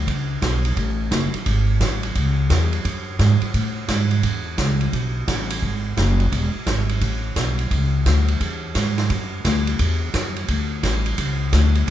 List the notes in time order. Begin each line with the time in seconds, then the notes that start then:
0.07 C#2, kick, ride
0.42 B1, kick, snare, hi-hat pedal, ride
0.65 ride
0.77 A1, kick, ride
1.11 F#1, kick, snare, hi-hat pedal, ride
1.34 muted upright bass stroke, ride
1.46 G#1, kick, ride
1.81 A1, kick, snare, hi-hat pedal, ride
2.03 ride
2.15 C#2, kick, ride
2.50 E2, kick, snare, hi-hat pedal, ride
2.73 ride
2.85 F#2, kick, ride
3.19 G#2, kick, snare, hi-hat pedal, ride
3.41 muted upright bass stroke, ride
3.54 A2, kick, ride
3.88 G#2, kick, snare, hi-hat pedal, ride
4.11 ride
4.23 E2, kick, ride
4.58 C#2, kick, snare, hi-hat pedal, ride
4.81 ride
4.93 B1, kick, ride
5.28 A1, kick, snare, hi-hat pedal, ride
5.50 ride
5.62 G#1, kick
5.97 F#1, kick, snare, hi-hat pedal, ride
6.20 ride
6.32 E1, kick, ride
6.55 muted upright bass stroke
6.66 G#1, kick, snare, hi-hat pedal, ride
6.89 ride
7.01 A1, kick, ride
7.36 B1, kick, snare, hi-hat pedal, ride
7.59 ride
7.71 C#2, kick, ride
8.06 D2, kick, snare, hi-hat pedal, ride
8.28 ride
8.40 E2, kick, ride
8.75 G#2, kick, snare, hi-hat pedal, ride
8.98 snare, ride
9.10 F#2, kick, ride
9.44 D2, kick, snare, hi-hat pedal, ride
9.67 ride
9.79 E2, kick, ride
10.14 F#2, kick, snare, hi-hat pedal, ride
10.36 ride
10.48 D2, kick, ride
10.83 A1, kick, snare, hi-hat pedal, ride
11.06 ride
11.18 C#2, kick, ride
11.53 D2, kick, snare, hi-hat pedal, ride
11.75 ride